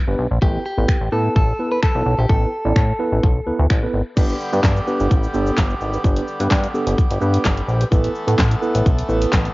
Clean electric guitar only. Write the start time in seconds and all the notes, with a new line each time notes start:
0.42 G4
0.66 G4
1.12 A4
1.36 A4
1.71 B4
1.83 A4
2.19 G4
2.29 A4